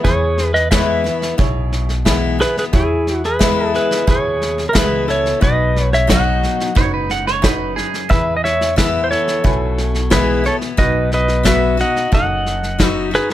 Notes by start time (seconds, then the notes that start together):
0.03 E2 E4 G#4 B4 C#5, kick, snare
0.38 snare
0.54 B4 D#5, snare
0.71 E3 G#3 B3 E4 G#4 B4 C#5 E5, kick, snare, hi-hat pedal
1.04 B3 E4, snare
1.22 snare
1.38 B1 B2 E4 G#4 C#5, kick, snare
1.72 snare
1.89 snare
2.05 E3 G#3 B3 E4 G#4 B4, kick, snare, hi-hat pedal
2.39 B3 E4 G#4 B4, snare
2.57 G#4 B4, snare
2.72 E2 E4 G#4 C#5, kick, snare
3.07 snare
3.24 G#4 B4, snare
3.39 E3 G#3 B3 E4 G#4 B4, kick, snare, hi-hat pedal
3.74 G#4 B4, snare
3.91 snare
4.07 D#2 B2 E4 G#4 B4, kick, snare
4.11 C#5
4.42 snare
4.58 snare
4.69 E4 A#4
4.73 C#2 E3 G#3 B3 E4 G#4 B4, kick, snare, hi-hat pedal
4.78 B4
5.08 B3 E4 A4 C#5, snare
5.26 snare
5.40 B1 B2 D#4 F#4 B4 D#5, kick, snare
5.76 snare
5.93 C#5 E5, snare
6.07 F#3 B3 D#4 F#4 C#5 D#5, kick, snare, hi-hat pedal
6.12 F#5
6.43 snare
6.60 snare
6.76 F#1 D#4 F#4 B4 C#5, kick, snare
6.94 B4
7.10 F#5, snare
7.27 C#5, snare
7.42 F#2 D#4 F#4 B4, kick, snare, hi-hat pedal
7.76 G#4, snare
7.94 snare
8.09 E2 E4 G#4 B4 E5, kick, snare
8.37 D#5
8.44 C#5 E5, snare
8.61 snare
8.76 E3 B3 E4 G#4 B4 E5, kick, snare, hi-hat pedal
9.04 C5
9.11 A4 C#5, snare
9.28 snare
9.44 B1 B2 E4 B4 G#5, kick, snare
9.78 snare
9.94 snare
10.10 E3 G#3 B3 E4 G#4 B4, kick, snare, hi-hat pedal
10.44 B3 E4 A4 C#5, snare
10.61 snare
10.77 B1 B2 D#4 F#4 B4 D#5, kick, snare
11.12 B4 D#5, snare
11.28 snare
11.43 F#3 B3 F#4 B4 E5, kick, snare, hi-hat pedal
11.77 D#4 F#4 D#5 F#5, snare
11.96 snare
12.12 F#1 F#2 D#4 F#4 A4 D#5 F#5, kick, snare
12.46 snare
12.63 snare
12.79 F#3 B3 D#4 F#4 B4, kick, snare, hi-hat pedal
12.86 E5
13.11 D#4 F#4 B4, snare
13.15 G#4
13.30 snare